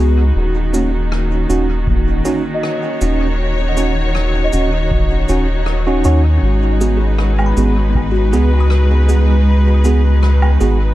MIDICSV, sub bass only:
0, 0, Header, 1, 2, 480
1, 0, Start_track
1, 0, Key_signature, 5, "minor"
1, 0, Tempo, 759494
1, 224, Time_signature, 4, 2, 24, 8
1, 6914, End_track
2, 0, Start_track
2, 0, Title_t, "Sub bass"
2, 0, Program_c, 0, 38
2, 0, Note_on_c, 0, 37, 98
2, 204, Note_off_c, 0, 37, 0
2, 226, Note_on_c, 0, 27, 98
2, 923, Note_off_c, 0, 27, 0
2, 944, Note_on_c, 0, 27, 86
2, 1402, Note_off_c, 0, 27, 0
2, 1905, Note_on_c, 0, 27, 88
2, 2843, Note_off_c, 0, 27, 0
2, 2865, Note_on_c, 0, 27, 86
2, 3323, Note_off_c, 0, 27, 0
2, 3343, Note_on_c, 0, 27, 91
2, 3821, Note_off_c, 0, 27, 0
2, 3824, Note_on_c, 0, 39, 89
2, 4037, Note_off_c, 0, 39, 0
2, 4061, Note_on_c, 0, 32, 98
2, 4761, Note_off_c, 0, 32, 0
2, 4783, Note_on_c, 0, 32, 87
2, 5264, Note_on_c, 0, 37, 84
2, 5273, Note_off_c, 0, 32, 0
2, 6682, Note_off_c, 0, 37, 0
2, 6705, Note_on_c, 0, 32, 83
2, 6914, Note_off_c, 0, 32, 0
2, 6914, End_track
0, 0, End_of_file